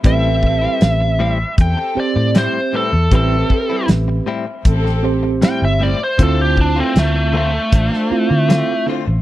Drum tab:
HH |x---x---x---x---|x---x---x---x---|x---x---x---x---|
SD |----o-------o---|----o----o--o---|----o----o--o---|
BD |o-o-----o-------|o-o-----o-------|o-o-----o-------|